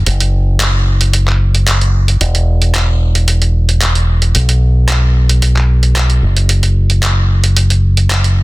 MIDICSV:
0, 0, Header, 1, 3, 480
1, 0, Start_track
1, 0, Tempo, 535714
1, 58, Time_signature, 4, 2, 24, 8
1, 7554, End_track
2, 0, Start_track
2, 0, Title_t, "Fingered electric bass"
2, 0, Program_c, 0, 33
2, 57, Note_on_c, 0, 30, 79
2, 1955, Note_off_c, 0, 30, 0
2, 1977, Note_on_c, 0, 28, 77
2, 3874, Note_off_c, 0, 28, 0
2, 3900, Note_on_c, 0, 35, 78
2, 5556, Note_off_c, 0, 35, 0
2, 5579, Note_on_c, 0, 30, 76
2, 7554, Note_off_c, 0, 30, 0
2, 7554, End_track
3, 0, Start_track
3, 0, Title_t, "Drums"
3, 58, Note_on_c, 9, 42, 67
3, 148, Note_off_c, 9, 42, 0
3, 183, Note_on_c, 9, 42, 44
3, 273, Note_off_c, 9, 42, 0
3, 537, Note_on_c, 9, 42, 68
3, 538, Note_on_c, 9, 39, 107
3, 627, Note_off_c, 9, 42, 0
3, 628, Note_off_c, 9, 39, 0
3, 903, Note_on_c, 9, 42, 47
3, 992, Note_off_c, 9, 42, 0
3, 1016, Note_on_c, 9, 42, 68
3, 1106, Note_off_c, 9, 42, 0
3, 1145, Note_on_c, 9, 39, 33
3, 1235, Note_off_c, 9, 39, 0
3, 1385, Note_on_c, 9, 42, 30
3, 1474, Note_off_c, 9, 42, 0
3, 1499, Note_on_c, 9, 42, 67
3, 1500, Note_on_c, 9, 39, 106
3, 1589, Note_off_c, 9, 42, 0
3, 1590, Note_off_c, 9, 39, 0
3, 1625, Note_on_c, 9, 42, 31
3, 1715, Note_off_c, 9, 42, 0
3, 1866, Note_on_c, 9, 42, 32
3, 1955, Note_off_c, 9, 42, 0
3, 1979, Note_on_c, 9, 42, 66
3, 2069, Note_off_c, 9, 42, 0
3, 2104, Note_on_c, 9, 42, 42
3, 2193, Note_off_c, 9, 42, 0
3, 2344, Note_on_c, 9, 42, 32
3, 2434, Note_off_c, 9, 42, 0
3, 2459, Note_on_c, 9, 42, 68
3, 2460, Note_on_c, 9, 39, 106
3, 2548, Note_off_c, 9, 42, 0
3, 2549, Note_off_c, 9, 39, 0
3, 2824, Note_on_c, 9, 42, 44
3, 2913, Note_off_c, 9, 42, 0
3, 2937, Note_on_c, 9, 42, 68
3, 3027, Note_off_c, 9, 42, 0
3, 3061, Note_on_c, 9, 42, 31
3, 3151, Note_off_c, 9, 42, 0
3, 3304, Note_on_c, 9, 42, 31
3, 3394, Note_off_c, 9, 42, 0
3, 3416, Note_on_c, 9, 42, 69
3, 3417, Note_on_c, 9, 39, 102
3, 3506, Note_off_c, 9, 42, 0
3, 3507, Note_off_c, 9, 39, 0
3, 3543, Note_on_c, 9, 42, 29
3, 3633, Note_off_c, 9, 42, 0
3, 3780, Note_on_c, 9, 42, 31
3, 3870, Note_off_c, 9, 42, 0
3, 3896, Note_on_c, 9, 42, 67
3, 3985, Note_off_c, 9, 42, 0
3, 4022, Note_on_c, 9, 42, 45
3, 4111, Note_off_c, 9, 42, 0
3, 4376, Note_on_c, 9, 42, 67
3, 4377, Note_on_c, 9, 39, 102
3, 4466, Note_off_c, 9, 42, 0
3, 4467, Note_off_c, 9, 39, 0
3, 4744, Note_on_c, 9, 42, 45
3, 4833, Note_off_c, 9, 42, 0
3, 4858, Note_on_c, 9, 42, 69
3, 4948, Note_off_c, 9, 42, 0
3, 4983, Note_on_c, 9, 39, 31
3, 5073, Note_off_c, 9, 39, 0
3, 5222, Note_on_c, 9, 42, 31
3, 5312, Note_off_c, 9, 42, 0
3, 5338, Note_on_c, 9, 42, 68
3, 5339, Note_on_c, 9, 39, 104
3, 5427, Note_off_c, 9, 42, 0
3, 5428, Note_off_c, 9, 39, 0
3, 5463, Note_on_c, 9, 42, 31
3, 5553, Note_off_c, 9, 42, 0
3, 5703, Note_on_c, 9, 42, 31
3, 5793, Note_off_c, 9, 42, 0
3, 5816, Note_on_c, 9, 42, 68
3, 5906, Note_off_c, 9, 42, 0
3, 5940, Note_on_c, 9, 42, 46
3, 6030, Note_off_c, 9, 42, 0
3, 6181, Note_on_c, 9, 42, 32
3, 6270, Note_off_c, 9, 42, 0
3, 6296, Note_on_c, 9, 42, 73
3, 6297, Note_on_c, 9, 39, 101
3, 6385, Note_off_c, 9, 42, 0
3, 6386, Note_off_c, 9, 39, 0
3, 6663, Note_on_c, 9, 42, 46
3, 6752, Note_off_c, 9, 42, 0
3, 6778, Note_on_c, 9, 42, 72
3, 6868, Note_off_c, 9, 42, 0
3, 6902, Note_on_c, 9, 42, 34
3, 6992, Note_off_c, 9, 42, 0
3, 7143, Note_on_c, 9, 42, 32
3, 7233, Note_off_c, 9, 42, 0
3, 7258, Note_on_c, 9, 42, 70
3, 7259, Note_on_c, 9, 39, 103
3, 7348, Note_off_c, 9, 42, 0
3, 7349, Note_off_c, 9, 39, 0
3, 7386, Note_on_c, 9, 42, 32
3, 7476, Note_off_c, 9, 42, 0
3, 7554, End_track
0, 0, End_of_file